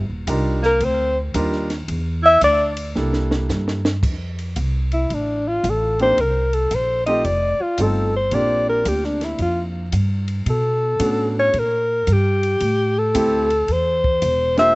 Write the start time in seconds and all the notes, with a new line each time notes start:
0.09 D#1
0.27 C2 G3 D4 D#4 F4 A#4, kick, hi-hat pedal, ride
0.63 A#3 A#4, snare
0.80 D2 C4, kick, ride
0.84 C5
1.34 D#2 G3 D4 D#4 F4 A#4, kick, hi-hat pedal, ride
1.53 snare
1.70 snare, ride
1.88 E2, kick, ride
2.23 E4 E5
2.41 D2 D4 D5, kick, hi-hat pedal, ride
2.77 ride
2.96 C2 G3 A#3 D4 E4 A4, snare
3.13 snare
3.31 snare
3.49 G2, snare, hi-hat pedal
3.68 snare
3.85 snare
4.03 F2, kick, crash
4.39 ride
4.56 C2, kick, hi-hat pedal, ride
4.92 E4, ride
5.10 A1, kick, ride
5.14 D4
5.48 F4
5.64 A1, kick, hi-hat pedal, ride
5.70 A4
5.99 A#3 C4 D4 D#4 G4 C5, ride
6.17 C2 A#4, kick, ride
6.53 A4, ride
6.71 A#1, kick, hi-hat pedal, ride
6.75 C5
7.06 A3 C4 D#4 F4 G4 D#5, ride
7.25 F1 D5, kick, ride
7.60 F4, muted upright bass stroke
7.78 G1 A3 C4 D#4 F4 A4, kick, hi-hat pedal, ride
7.82 A4
8.16 C5
8.31 A#1 A#3 C4 D4 F4 G4 D5, kick, ride
8.69 A#4
8.85 D2 G4, kick, hi-hat pedal, ride
9.04 D4, snare
9.21 E4, snare, ride
9.38 F2 F4, kick, ride
9.92 G2, kick, hi-hat pedal, ride
10.28 ride
10.46 B2 A4, kick, ride
10.99 A2 B3 C#4 D4 F#4 A4, kick, hi-hat pedal, ride
11.39 C#5
11.54 A#2, kick, ride
11.59 A#4
12.07 G2, kick, hi-hat pedal, ride
12.13 G4
12.43 ride
12.60 A2, kick, ride
12.99 A4
13.14 D2 A3 C4 E4 G4 A4, kick, hi-hat pedal, ride
13.50 ride
13.68 E2, kick, ride
13.72 C5
14.04 kick
14.22 E1, kick, hi-hat pedal, ride
14.57 A#3 D4 F4 G4 C5 E5, snare, ride